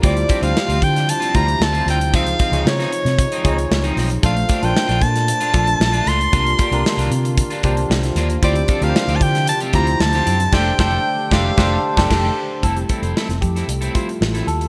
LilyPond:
<<
  \new Staff \with { instrumentName = "Soprano saxophone" } { \time 4/4 \key f \major \tempo 4 = 114 d''8. f''8. g''8 a''8 bes''8 a''8 g''8 | f''4 des''2~ des''8 r8 | f''8. g''8. a''2 c'''8~ | c'''4. r2 r8 |
d''8. f''8~ f''32 a''32 g''8 a''8 bes''8 a''4 | g''8 g''4 f''4 r4. | r1 | }
  \new Staff \with { instrumentName = "Tine electric piano" } { \time 4/4 \key f \major <e' f' g' c''>8. <d' f' g' c''>4. r16 <e' f' g' c''>4~ <e' f' g' c''>16 r16 | <ees' f' aes' c''>8. <ees' f' aes' des''>4. r16 <ees' f' aes' des''>4~ <ees' f' aes' des''>16 r16 | <d' f' a' c''>8. <d' f' a' bes' c''>4. r16 <d' f' a' d''>4~ <d' f' a' d''>16 r16 | <d' f' g' bes'>8. <d' f' g' bes'>4. r16 <d' f' g' c''>4~ <d' f' g' c''>16 r16 |
<e' f' g' c''>8. <d' f' g' bes' c''>4. r16 <e' f' g' c''>4~ <e' f' g' c''>16 r16 | <d' g' a' c''>8 <d' g' a' c''>8 r8 <d' g' a' c''>8 <d' g' a' c''>8 r16 <d' g' a' c''>16 r4 | a'16 g'16 a'4 g'4 f'4 a'8 | }
  \new Staff \with { instrumentName = "Tine electric piano" } { \time 4/4 \key f \major r1 | r1 | r1 | r1 |
r1 | r1 | <g a e'>2~ <g a e'>8 <g a e'>8 r4 | }
  \new Staff \with { instrumentName = "Clean electric guitar" } { \time 4/4 \key f \major <g c' f'>16 r16 <g c' g'>16 <g c' f'>16 r16 <g c' f'>16 r8. <g c' f'>16 <g c' f'>16 r8 <g c' f'>16 <g c' f'>16 r16 | <f c' ees'>16 r16 <f c' f'>16 <f c' ees'>16 r16 <f c' ees'>16 r8. <f c' ees'>16 <f c' ees'>16 r8 <f c' ees'>16 <f c' ees'>16 r16 | <a d' f'>16 r16 <a d' g'>16 <a d' f'>16 r16 <a d' f'>16 r8. <a d' f'>16 <a d' f'>16 r8 <a d' f'>16 <a d' f'>16 r16 | <bes d' f'>16 r16 <bes d' g'>16 <bes d' f'>16 r16 <bes d' f'>16 r8. <bes d' f'>16 <bes d' f'>16 r8. <bes d' f'>16 r16 |
<c' f' g'>16 r16 <c' f' a'>16 <c' f' g'>16 r16 <c' f' g'>16 r8. <c' f' g'>16 <c' f' g'>16 r8 <c' f' g'>16 <c' f' g'>16 r16 | <a d' g'>8 <a d' a'>8 r8 <a d' g'>8 <a d' g'>8 r16 <a d' g'>16 <a d' g'>8 r8 | <c' e' a'>16 r16 <c' e' a'>16 <c' e' c''>16 <c' e' a'>16 r8 <c' e' a'>16 r16 <c' e' a'>16 <c' e' c''>16 r8 <c' e' a'>16 r8 | }
  \new Staff \with { instrumentName = "Analog synth pad" } { \time 4/4 \key f \major << { <g d'>1 | ees'1 | <a d'>1 | <bes f'>1 |
<d' g'>1 | <a g'>1 | <a a'>1 | } \\ { <c f>1~ | <c f>1 | bes,1 | d1 |
<c f>1 | d1 | f1 | } >> }
  \new Staff \with { instrumentName = "Fingered electric bass" } { \clef bass \time 4/4 \key f \major d,8 r16 d,16 r16 d,16 d8. r16 d,8 d,8 d,8 | des,8 r16 des,16 des8 r16 c8 r16 des,8 des,8 b,,8 | bes,,8 r16 bes,,16 r16 bes,,16 bes,8. r16 bes,,8 bes,,8 des,8 | c,8 r16 c,16 r16 c,16 c8. r16 c,8 c,8 ees,8 |
d,8 r16 d,16 r16 d,16 d8. r16 d,8 d,8 ges,8 | f,,8 f,,8 r8 f,,8 f,,8 r16 f,,16 f,,8 r8 | f,,8 r16 f,,16 r16 f,,16 f,8 c,8 r8 a,,8 ees,8 | }
  \new DrumStaff \with { instrumentName = "Drums" } \drummode { \time 4/4 <hh bd>16 hh16 <hh bd>16 hh16 sn16 hh16 <hh bd>16 <hh sn>16 hh16 hh16 <hh bd>16 hh16 sn16 hh16 <hh sn>16 hh16 | <hh bd>16 hh16 <hh bd>16 hh16 sn16 <hh sn>16 hh16 <hh sn>16 <hh bd>16 hh16 <hh bd>16 hh16 sn16 hh16 <hho sn>16 hh16 | <hh bd>16 hh16 <hh bd>16 hh16 sn16 <hh sn>16 <hh bd>16 <hh sn>16 hh16 hh16 <hh bd>16 hh16 sn16 hh16 <hh sn>16 hh16 | <hh bd>16 hh16 <hh bd>16 hh16 sn16 <hh sn>16 hh16 hh16 <hh bd>16 hh16 <hh bd>16 hh16 sn16 <hh sn>16 <hh sn>16 hh16 |
<hh bd>16 hh16 <hh bd>16 hh16 sn16 hh16 <hh bd>16 <hh sn>16 hh16 hh16 <hh bd>16 hh16 sn16 <hh sn>16 hh16 hh16 | <cymc bd sn>8 <bd sn>8 r8 <bd sn>8 <bd sn>8. <bd sn>16 <cymc bd sn>4 | <hh bd>16 hh16 <hh bd>16 hh16 sn16 <hh sn>16 <hh bd>16 <hh sn>16 hh16 hh16 <hh bd>16 hh16 sn16 <hh sn>16 hh16 hh16 | }
>>